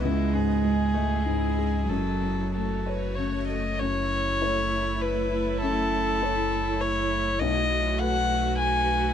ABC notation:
X:1
M:3/4
L:1/8
Q:1/4=100
K:F#dor
V:1 name="Violin"
E G4- G | A2 A B c d | c4 B2 | A4 c2 |
d2 f2 g2 |]
V:2 name="Ambient pad"
[EGd]6 | [A,Fc]6 | [A,Ec]6- | [A,Ec]6 |
[A,FB]6 |]
V:3 name="Viola"
z6 | z6 | E6- | E6 |
F6 |]
V:4 name="Felt piano"
C,, G,, G, d G,, G, | F,, C, A, c C, A, | F,,2 [A,Ec]4 | F,,2 [A,Ec]4 |
B,,,2 [A,FB]4 |]
V:5 name="Cello" clef=bass
G,3 A, G,2 | F,4 z2 | A,6- | A,6 |
A,6 |]
V:6 name="Sub bass" clef=bass
C,,6 | F,,,6 | F,,,6- | F,,,6 |
B,,,6 |]